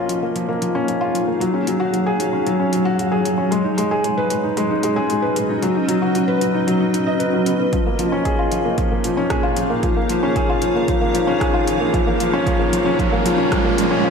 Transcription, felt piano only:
Already playing: F3 A#3 C#4 F4
0.09 F3
0.23 A#3
0.36 F3
0.49 A#3
0.62 F3
0.75 C#4
0.88 F3
1.01 F4
1.14 F3
1.27 A#3
1.40 F#3
1.54 C#4
1.67 F#3
1.80 F#4
1.93 F#3
2.06 G#4
2.20 F#3
2.33 C#4
2.46 F#3
2.60 C#4
2.72 F#3
2.85 F#4
2.99 F#3
3.12 G#4
3.25 F#3
3.38 C#4
3.51 G#3
3.64 D#4
3.78 G#3
3.91 G#4
4.04 G#3
4.18 B4
4.31 G#3
4.43 D#4
4.57 G#3
4.70 D#4
4.83 G#3
4.96 G#4
5.09 G#3
5.22 B4
5.36 G#3
5.49 D#4
5.62 F#3
5.75 D#4
5.88 F#3
6.02 F#4
6.15 F#3
6.28 B4
6.41 F#3
6.54 D#4
6.67 F#3
6.80 D#4
6.93 D#4
7.07 D#5
7.20 B4
7.33 F#3
7.46 B3
7.59 B3
7.73 F3
7.86 A#3
7.99 F3
8.12 C#4
8.25 G#4
8.39 F4
8.52 F3
8.65 A#3
8.78 F3
8.91 A#3
9.04 F3
9.17 C#4
9.30 G#4
9.43 F4
9.57 F3
9.70 A#3
9.83 F3
9.96 A#3
10.10 F3
10.23 C#4
10.36 G#4
10.49 F4
10.63 F3
10.76 A#3
10.88 F3
11.01 A#3
11.14 F3
11.27 C#4
11.40 G#4
11.54 F4
11.67 F3
11.80 A#3
11.93 F3
12.07 A#3
12.20 F3
12.33 C#4
12.46 F3
12.59 A#3
12.73 F3
12.86 C#4
12.99 F3
13.12 A#3
13.25 F3
13.38 C#4
13.52 F3
13.65 A#3
13.78 F3
13.91 C#4
14.04 F3

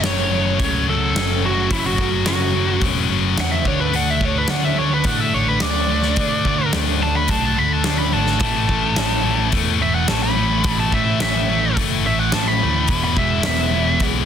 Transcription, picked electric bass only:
0.05 F#1
0.59 C#2
0.87 C#2
1.14 F#1
1.71 F#1
1.98 F#1
2.26 F#1
2.81 E1
3.10 F#1
3.38 E2
3.65 D2
3.93 D2
4.21 D2
4.50 D2
5.04 A2
5.33 A1
5.62 D2
6.17 D2
6.44 D2
6.74 D2
7.29 B1
7.58 D2
7.86 D2
8.14 G#1
8.40 A1
8.68 A1
8.98 A1
9.52 E2
9.80 E1
10.10 A1
10.64 A1
10.92 A1
11.21 A1
11.77 F#1
12.07 A1
12.35 A1
12.63 D2
12.88 E1
13.17 E1
13.47 E1
14.00 B1

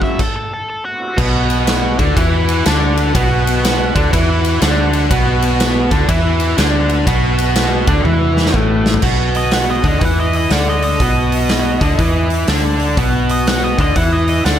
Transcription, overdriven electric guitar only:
Already playing: F#2 C#3 F#3
1.18 B2 B3
1.98 D3 D4
2.16 E3 E4
2.65 D3 D4
3.14 B2 B3
3.95 D3 D4
4.12 E3 E4
4.62 D3 D4
5.10 B2 B3
5.91 D3 D4
6.08 E3 E4
6.57 D3 D4
7.06 B2 B3
7.88 D3 D4
8.05 E3 E4
8.54 A2 A3
9.02 B2 B3
9.84 D3 D4
10.01 E3 E4
10.51 D3 D4
11.01 B2 B3
11.81 D3 D4
11.99 E3 E4
12.48 D3 D4
12.97 B2 B3
13.78 D3 D4
13.96 E3 E4
14.45 D3 D4

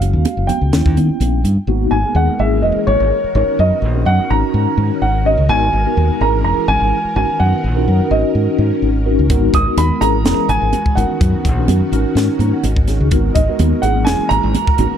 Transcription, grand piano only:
Already playing: F5
0.47 G5
1.91 G#5
2.16 F#5
2.40 E5
2.62 D#5
2.87 C#5
3.36 C#5
3.60 D#5
4.06 F#5
4.30 A#5
5.02 F#5
5.26 D#5
5.49 G#5
6.21 A#5
6.44 A#5
6.68 G#5
7.16 G#5
7.40 F#5
8.11 D#5
9.55 D#6
9.78 B5
10.01 A#5
10.49 G#5
10.95 F#5
13.35 D#5
13.82 F#5
14.05 G#5
14.29 A#5

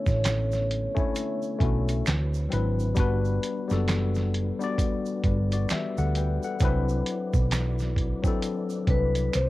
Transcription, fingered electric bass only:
0.08 A1
1.61 B1
2.08 D2
2.53 G#1
2.98 G1
3.71 F#1
5.25 G1
5.71 muted fingered electric bass stroke
5.98 D2
6.61 C2
7.35 B1
8.88 C2
9.35 C2

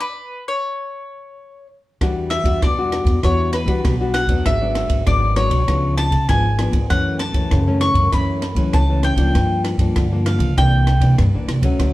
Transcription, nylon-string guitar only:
2.01 E3 G3 D4 F#4
2.44 G3 D4 F#4
2.62 B2
2.78 G3 D4 F#4
3.23 E3 G3 D4 F#4
3.68 G3 D4 F#4
3.84 B2
4.00 G3 D4 F#4
4.29 F#3 B3 D4
4.45 G#2
4.62 F#3 B3 D4
5.07 G#2 F#3 B3 D4
5.36 F#3 B3 D4
5.68 C#3 F3 B3 D4
6.28 G#2 F3 B3 D4
6.59 F3 B3 D4
6.90 F#2 E3 A3 C#4
7.34 E3 A3 C#4
7.51 C#3
7.67 E3 A3 C#4
8.13 F#2 E3 A3 C#4
8.57 E3 A3 C#4
8.74 C#3
8.89 E3 A3 C#4
9.18 F3 A#3 D4
9.35 G2
9.79 F3 A#3 D4
9.96 D3
10.12 F3 A#3 D4
10.57 C3 E3 A#3 D4
11.01 E3 A#3 D4
11.18 G2
11.35 E3 A#3 D4
11.63 F#3 A3 C#4
11.79 D3

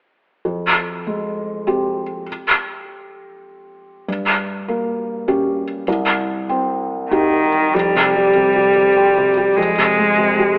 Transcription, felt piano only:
0.45 F2
1.07 G#3
1.67 C4 G4
4.08 G2
4.68 A#3
5.28 C#4 G4
5.88 C2
6.49 C4
7.11 D#4 G4
7.75 F2
7.95 C3
8.16 G3
8.36 C3
8.56 G4
8.76 C3
8.96 C4
9.18 C3
9.37 G4
9.58 F2
9.78 C3
9.99 G#3
10.18 C3
10.39 G4

